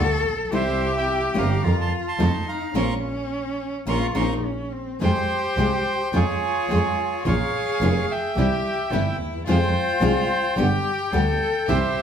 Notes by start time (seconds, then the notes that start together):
Already playing: D2 B3 F4 G4 A4 C#6
0.25 A#1
0.51 C2 C3 E3 G3 C4 E4 G4 C5
0.55 E5
0.97 E5 G5
1.34 G1 F3 A#3 C4 C#4 E4 F4 G4
1.38 F5 A#5
1.63 F2 C#4 F4 A#4
1.80 A5 C6
2.08 A5 C6
2.19 F2 C3 F3 A3 C4 D#4 F4 A4
2.48 F5 A#5
2.74 A#1 A#3 C4 C#4 F4 A#4 A#5 C6 C#6
3.86 A#1 A#3 C4 C#4 F4 A#4 A#5 C6 C#6
4.15 A#1 A#3 C4 C#4 D#4 F4 A#4 A#5 C6 C#6
4.45 C#4
4.73 C4
5.00 F2 C3 F3 G#3 C4 F4 G4 G#4 C5 G5
5.57 C2 C3 F3 G#3 C4 F4 G#4
6.13 F2 C#3 F3 G#3 C#4 F4 G#4 C#5
6.69 F2 C#3 F3 G#3 C#4 F4 G#4
7.25 A#1 F3 A#3 C#4 F4 G#4 A#4 C#5 F5
7.80 F1 F3 A#3 C#4 F4 A#4
8.11 E5 G5
8.36 C2 C3 E3 G3 C4 E4 G4
8.91 G1 C3 E3 G3 C4 E4 G4
9.19 D#2
9.47 F2 C3 F3 G#3 C4 F4 G#4 C5
9.51 G5
10.01 C2 C3 F3 G#3 C4 F4 G#4
10.57 G1 B2 D3 G3 B3 D4 G4
11.12 D2 B2 D3 G3 B3 D4 G4 A4
11.68 C2 C3 E3 G3 C4 E4 G4 C5 E5